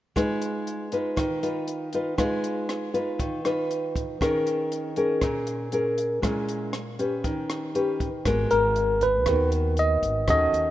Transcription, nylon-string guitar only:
0.16 1.15 G#3 medium
0.16 0.88 D#4 soft
0.16 0.88 F4 soft
0.16 0.89 B4 medium
0.92 1.39 D#4 medium
0.92 1.39 F4 medium
0.92 1.39 B4 medium
1.16 2.16 D#3 medium
1.43 1.89 D#4 medium
1.43 1.89 F4 medium
1.43 1.90 B4 medium
1.94 2.15 D#4 medium
1.94 2.15 F4 medium
1.94 2.15 B4 medium
2.18 3.17 G#3 medium
2.18 2.90 D#4 medium
2.18 2.90 F4 medium
2.18 2.91 B4 medium
2.94 3.41 D#4 medium
2.94 3.41 F4 medium
2.94 3.41 B4 medium
3.19 4.18 D#3 medium
3.44 4.17 D#4 medium
3.44 4.17 F4 medium
3.44 4.17 B4 medium
4.21 5.20 D#3 medium
4.21 4.93 C#4 medium
4.21 4.93 G#4 soft
4.21 4.93 A#4 medium
4.97 5.69 C#4 medium
4.97 5.69 G#4 medium
4.97 5.69 A#4 medium
5.22 6.21 A#2 medium
5.72 6.19 C#4 medium
5.72 6.19 G#4 soft
5.72 6.19 A#4 medium
6.22 7.22 A#2 medium
6.22 6.73 G#3 soft
6.22 6.74 C#4 medium
6.22 6.74 E4 medium
6.99 7.71 C#4 medium
6.99 7.71 G4 medium
6.99 7.71 B4 medium
7.24 8.23 D#3 medium
7.75 8.08 C#4 medium
7.75 8.08 G4 medium
7.75 8.08 B4 medium
8.26 9.25 G#3 medium
8.26 9.23 B3 soft
8.26 9.24 F#4 soft
8.26 9.24 A#4 medium
9.27 10.26 D#3 soft
9.27 10.25 B3 soft
9.27 10.25 F#4 soft
9.27 10.25 A#4 medium
10.28 10.71 D#3 medium
10.28 10.71 C#4 medium
10.28 10.71 F#4 medium
10.28 10.71 A4 medium

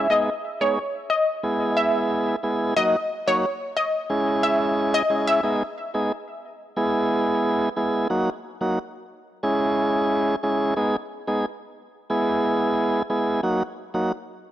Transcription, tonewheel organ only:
0.10 0.30 G#3 medium
0.10 0.30 B3 medium
0.10 0.30 D#4 medium
0.10 0.30 G#4 medium
0.61 0.79 G#3 medium
0.61 0.79 B3 medium
0.61 0.79 D#4 medium
0.61 0.79 G#4 medium
1.43 2.36 G#3 medium
1.43 2.36 B3 medium
1.43 2.36 E4 medium
1.43 2.36 G#4 medium
2.43 2.74 G#3 medium
2.43 2.74 B3 medium
2.43 2.74 E4 medium
2.43 2.74 G#4 medium
2.76 2.96 F#3 medium
2.76 2.96 A#3 medium
2.76 2.96 D#4 medium
2.76 2.96 F#4 loud
3.27 3.45 F#3 medium
3.27 3.45 A#3 medium
3.27 3.46 D#4 medium
3.27 3.46 F#4 medium
4.10 5.02 G#3 medium
4.10 5.02 C#4 medium
4.10 5.03 E4 medium
4.10 5.03 G#4 loud
5.10 5.41 G#3 medium
5.10 5.41 C#4 medium
5.10 5.41 E4 medium
5.10 5.41 G#4 medium
5.43 5.63 G#3 medium
5.43 5.63 B3 medium
5.43 5.63 D#4 medium
5.43 5.63 G#4 loud
5.94 6.12 G#3 medium
5.94 6.12 B3 medium
5.94 6.12 D#4 medium
5.94 6.12 G#4 medium
6.76 7.69 G#3 medium
6.76 7.69 B3 medium
6.76 7.69 E4 medium
6.76 7.69 G#4 loud
7.76 8.07 G#3 medium
7.76 8.07 B3 medium
7.76 8.08 E4 medium
7.76 8.08 G#4 medium
8.10 8.30 F#3 medium
8.10 8.30 A#3 medium
8.10 8.30 D#4 medium
8.10 8.30 F#4 loud
8.61 8.79 F#3 medium
8.61 8.79 A#3 medium
8.61 8.79 D#4 medium
8.61 8.79 F#4 medium
9.43 10.36 G#3 medium
9.43 10.36 C#4 medium
9.43 10.36 E4 medium
9.43 10.36 G#4 loud
10.43 10.74 G#3 medium
10.43 10.74 C#4 medium
10.43 10.74 E4 medium
10.43 10.74 G#4 medium
10.76 10.96 G#3 medium
10.76 10.96 B3 medium
10.76 10.96 D#4 medium
10.76 10.96 G#4 loud
11.27 11.45 G#3 medium
11.27 11.46 B3 medium
11.27 11.46 D#4 medium
11.27 11.46 G#4 medium
12.10 13.02 G#3 medium
12.10 13.02 B3 medium
12.10 13.03 E4 medium
12.10 13.03 G#4 loud
13.10 13.41 G#3 medium
13.10 13.41 B3 medium
13.10 13.41 E4 medium
13.10 13.41 G#4 medium
13.43 13.63 F#3 medium
13.43 13.63 A#3 medium
13.43 13.63 D#4 medium
13.43 13.63 F#4 loud
13.94 14.12 F#3 medium
13.94 14.12 A#3 medium
13.94 14.12 D#4 medium
13.94 14.12 F#4 medium

